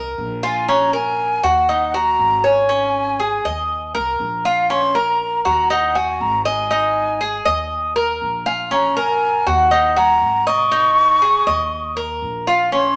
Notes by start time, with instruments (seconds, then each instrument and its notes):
Already playing: upright bass C2, cuban tres A#4
0.18 upright bass A#1
0.43 cuban tres F4, flute G#5
0.68 cuban tres C#4, flute A#5
0.93 cuban tres A#4, flute G#5
1.43 upright bass D#2, cuban tres F#4, flute F#5
1.69 cuban tres D#4
1.94 cuban tres F#4, flute A#5
2.19 upright bass G#1
2.44 cuban tres C#5, flute G#5
2.69 cuban tres C#4
3.20 cuban tres G#4
3.45 upright bass D#2, cuban tres D#5
3.95 upright bass C2, cuban tres A#4
4.20 upright bass A#1
4.45 cuban tres F4, flute F5
4.70 cuban tres C#4, flute C6
4.95 cuban tres A#4, flute A#5
5.45 upright bass D#2, cuban tres F#4, flute A#5
5.70 cuban tres D#4, flute F#5
5.95 cuban tres F#4, flute G#5
6.20 upright bass G#1, flute A#5
6.45 cuban tres D#5, flute G#5
6.71 cuban tres D#4
7.21 cuban tres G#4
7.45 upright bass D#2, cuban tres D#5
7.96 cuban tres A#4
8.22 upright bass A#1
8.46 cuban tres F4, flute G#5
8.71 cuban tres C#4, flute A#5
8.96 cuban tres A#4, flute G#5
9.46 upright bass D#2, cuban tres F#4, flute F#5
9.71 cuban tres D#4
9.96 cuban tres F#4, flute A#5
10.22 upright bass G#1
10.47 cuban tres D#5, flute C#6
10.72 cuban tres D#4
11.22 cuban tres G#4
11.47 upright bass D#2, cuban tres D#5
11.97 cuban tres A#4
12.22 upright bass A#1
12.47 cuban tres F4, flute F5
12.72 cuban tres C#4, flute C6